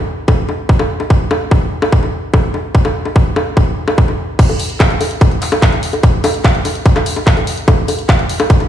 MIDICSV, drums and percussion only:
0, 0, Header, 1, 2, 480
1, 0, Start_track
1, 0, Tempo, 410959
1, 1287, Time_signature, 4, 2, 24, 8
1, 10142, End_track
2, 0, Start_track
2, 0, Title_t, "Drums"
2, 328, Note_on_c, 9, 36, 116
2, 328, Note_on_c, 9, 60, 79
2, 445, Note_off_c, 9, 36, 0
2, 445, Note_off_c, 9, 60, 0
2, 568, Note_on_c, 9, 60, 41
2, 685, Note_off_c, 9, 60, 0
2, 808, Note_on_c, 9, 36, 111
2, 925, Note_off_c, 9, 36, 0
2, 928, Note_on_c, 9, 60, 81
2, 1045, Note_off_c, 9, 60, 0
2, 1168, Note_on_c, 9, 60, 40
2, 1285, Note_off_c, 9, 60, 0
2, 1288, Note_on_c, 9, 36, 110
2, 1405, Note_off_c, 9, 36, 0
2, 1528, Note_on_c, 9, 60, 78
2, 1645, Note_off_c, 9, 60, 0
2, 1768, Note_on_c, 9, 36, 111
2, 1768, Note_on_c, 9, 60, 39
2, 1885, Note_off_c, 9, 36, 0
2, 1885, Note_off_c, 9, 60, 0
2, 2128, Note_on_c, 9, 60, 80
2, 2245, Note_off_c, 9, 60, 0
2, 2248, Note_on_c, 9, 36, 113
2, 2365, Note_off_c, 9, 36, 0
2, 2368, Note_on_c, 9, 60, 40
2, 2485, Note_off_c, 9, 60, 0
2, 2728, Note_on_c, 9, 36, 112
2, 2728, Note_on_c, 9, 60, 82
2, 2845, Note_off_c, 9, 36, 0
2, 2845, Note_off_c, 9, 60, 0
2, 2968, Note_on_c, 9, 60, 38
2, 3085, Note_off_c, 9, 60, 0
2, 3208, Note_on_c, 9, 36, 112
2, 3325, Note_off_c, 9, 36, 0
2, 3328, Note_on_c, 9, 60, 77
2, 3445, Note_off_c, 9, 60, 0
2, 3568, Note_on_c, 9, 60, 39
2, 3685, Note_off_c, 9, 60, 0
2, 3688, Note_on_c, 9, 36, 116
2, 3805, Note_off_c, 9, 36, 0
2, 3928, Note_on_c, 9, 60, 75
2, 4045, Note_off_c, 9, 60, 0
2, 4168, Note_on_c, 9, 36, 119
2, 4168, Note_on_c, 9, 60, 39
2, 4284, Note_off_c, 9, 60, 0
2, 4285, Note_off_c, 9, 36, 0
2, 4528, Note_on_c, 9, 60, 75
2, 4644, Note_off_c, 9, 60, 0
2, 4648, Note_on_c, 9, 36, 116
2, 4765, Note_off_c, 9, 36, 0
2, 4768, Note_on_c, 9, 60, 40
2, 4885, Note_off_c, 9, 60, 0
2, 5127, Note_on_c, 9, 42, 91
2, 5127, Note_on_c, 9, 49, 110
2, 5128, Note_on_c, 9, 36, 117
2, 5244, Note_off_c, 9, 36, 0
2, 5244, Note_off_c, 9, 42, 0
2, 5244, Note_off_c, 9, 49, 0
2, 5248, Note_on_c, 9, 60, 38
2, 5364, Note_off_c, 9, 60, 0
2, 5368, Note_on_c, 9, 46, 110
2, 5484, Note_off_c, 9, 46, 0
2, 5487, Note_on_c, 9, 42, 58
2, 5604, Note_off_c, 9, 42, 0
2, 5608, Note_on_c, 9, 36, 124
2, 5608, Note_on_c, 9, 39, 127
2, 5608, Note_on_c, 9, 42, 81
2, 5608, Note_on_c, 9, 60, 76
2, 5724, Note_off_c, 9, 36, 0
2, 5724, Note_off_c, 9, 39, 0
2, 5724, Note_off_c, 9, 42, 0
2, 5724, Note_off_c, 9, 60, 0
2, 5728, Note_on_c, 9, 42, 38
2, 5844, Note_off_c, 9, 42, 0
2, 5847, Note_on_c, 9, 46, 107
2, 5847, Note_on_c, 9, 60, 40
2, 5964, Note_off_c, 9, 46, 0
2, 5964, Note_off_c, 9, 60, 0
2, 5968, Note_on_c, 9, 42, 55
2, 6084, Note_off_c, 9, 42, 0
2, 6088, Note_on_c, 9, 36, 125
2, 6088, Note_on_c, 9, 42, 86
2, 6088, Note_on_c, 9, 60, 39
2, 6204, Note_off_c, 9, 36, 0
2, 6205, Note_off_c, 9, 42, 0
2, 6205, Note_off_c, 9, 60, 0
2, 6208, Note_on_c, 9, 42, 39
2, 6325, Note_off_c, 9, 42, 0
2, 6328, Note_on_c, 9, 39, 40
2, 6328, Note_on_c, 9, 46, 111
2, 6445, Note_off_c, 9, 39, 0
2, 6445, Note_off_c, 9, 46, 0
2, 6448, Note_on_c, 9, 42, 55
2, 6448, Note_on_c, 9, 60, 78
2, 6565, Note_off_c, 9, 42, 0
2, 6565, Note_off_c, 9, 60, 0
2, 6568, Note_on_c, 9, 36, 117
2, 6568, Note_on_c, 9, 39, 127
2, 6568, Note_on_c, 9, 42, 81
2, 6684, Note_off_c, 9, 39, 0
2, 6684, Note_off_c, 9, 42, 0
2, 6685, Note_off_c, 9, 36, 0
2, 6688, Note_on_c, 9, 42, 38
2, 6688, Note_on_c, 9, 60, 39
2, 6804, Note_off_c, 9, 42, 0
2, 6804, Note_off_c, 9, 60, 0
2, 6808, Note_on_c, 9, 46, 103
2, 6924, Note_off_c, 9, 46, 0
2, 6928, Note_on_c, 9, 42, 53
2, 6928, Note_on_c, 9, 60, 37
2, 7044, Note_off_c, 9, 42, 0
2, 7044, Note_off_c, 9, 60, 0
2, 7048, Note_on_c, 9, 36, 127
2, 7048, Note_on_c, 9, 42, 87
2, 7164, Note_off_c, 9, 42, 0
2, 7165, Note_off_c, 9, 36, 0
2, 7288, Note_on_c, 9, 46, 113
2, 7288, Note_on_c, 9, 60, 81
2, 7405, Note_off_c, 9, 46, 0
2, 7405, Note_off_c, 9, 60, 0
2, 7408, Note_on_c, 9, 42, 56
2, 7525, Note_off_c, 9, 42, 0
2, 7528, Note_on_c, 9, 36, 127
2, 7528, Note_on_c, 9, 39, 124
2, 7528, Note_on_c, 9, 42, 81
2, 7528, Note_on_c, 9, 60, 39
2, 7645, Note_off_c, 9, 36, 0
2, 7645, Note_off_c, 9, 39, 0
2, 7645, Note_off_c, 9, 42, 0
2, 7645, Note_off_c, 9, 60, 0
2, 7648, Note_on_c, 9, 42, 37
2, 7764, Note_off_c, 9, 42, 0
2, 7768, Note_on_c, 9, 46, 115
2, 7768, Note_on_c, 9, 60, 40
2, 7884, Note_off_c, 9, 46, 0
2, 7884, Note_off_c, 9, 60, 0
2, 7888, Note_on_c, 9, 42, 55
2, 8005, Note_off_c, 9, 42, 0
2, 8008, Note_on_c, 9, 36, 127
2, 8008, Note_on_c, 9, 42, 83
2, 8125, Note_off_c, 9, 36, 0
2, 8125, Note_off_c, 9, 42, 0
2, 8128, Note_on_c, 9, 39, 39
2, 8128, Note_on_c, 9, 42, 38
2, 8128, Note_on_c, 9, 60, 78
2, 8245, Note_off_c, 9, 39, 0
2, 8245, Note_off_c, 9, 42, 0
2, 8245, Note_off_c, 9, 60, 0
2, 8248, Note_on_c, 9, 46, 116
2, 8365, Note_off_c, 9, 46, 0
2, 8368, Note_on_c, 9, 42, 50
2, 8368, Note_on_c, 9, 60, 37
2, 8485, Note_off_c, 9, 42, 0
2, 8485, Note_off_c, 9, 60, 0
2, 8488, Note_on_c, 9, 36, 121
2, 8488, Note_on_c, 9, 39, 124
2, 8488, Note_on_c, 9, 42, 84
2, 8605, Note_off_c, 9, 36, 0
2, 8605, Note_off_c, 9, 39, 0
2, 8605, Note_off_c, 9, 42, 0
2, 8608, Note_on_c, 9, 42, 40
2, 8608, Note_on_c, 9, 60, 39
2, 8725, Note_off_c, 9, 42, 0
2, 8725, Note_off_c, 9, 60, 0
2, 8728, Note_on_c, 9, 46, 115
2, 8844, Note_off_c, 9, 46, 0
2, 8848, Note_on_c, 9, 42, 56
2, 8965, Note_off_c, 9, 42, 0
2, 8968, Note_on_c, 9, 36, 126
2, 8968, Note_on_c, 9, 42, 84
2, 8968, Note_on_c, 9, 60, 83
2, 9084, Note_off_c, 9, 42, 0
2, 9084, Note_off_c, 9, 60, 0
2, 9085, Note_off_c, 9, 36, 0
2, 9208, Note_on_c, 9, 46, 116
2, 9208, Note_on_c, 9, 60, 40
2, 9324, Note_off_c, 9, 46, 0
2, 9324, Note_off_c, 9, 60, 0
2, 9328, Note_on_c, 9, 42, 55
2, 9445, Note_off_c, 9, 42, 0
2, 9448, Note_on_c, 9, 36, 127
2, 9448, Note_on_c, 9, 39, 126
2, 9448, Note_on_c, 9, 42, 80
2, 9448, Note_on_c, 9, 60, 39
2, 9565, Note_off_c, 9, 36, 0
2, 9565, Note_off_c, 9, 39, 0
2, 9565, Note_off_c, 9, 42, 0
2, 9565, Note_off_c, 9, 60, 0
2, 9568, Note_on_c, 9, 42, 38
2, 9685, Note_off_c, 9, 42, 0
2, 9688, Note_on_c, 9, 46, 113
2, 9805, Note_off_c, 9, 46, 0
2, 9808, Note_on_c, 9, 42, 56
2, 9808, Note_on_c, 9, 60, 81
2, 9925, Note_off_c, 9, 42, 0
2, 9925, Note_off_c, 9, 60, 0
2, 9928, Note_on_c, 9, 36, 127
2, 9928, Note_on_c, 9, 42, 79
2, 10045, Note_off_c, 9, 36, 0
2, 10045, Note_off_c, 9, 42, 0
2, 10048, Note_on_c, 9, 42, 37
2, 10048, Note_on_c, 9, 60, 40
2, 10142, Note_off_c, 9, 42, 0
2, 10142, Note_off_c, 9, 60, 0
2, 10142, End_track
0, 0, End_of_file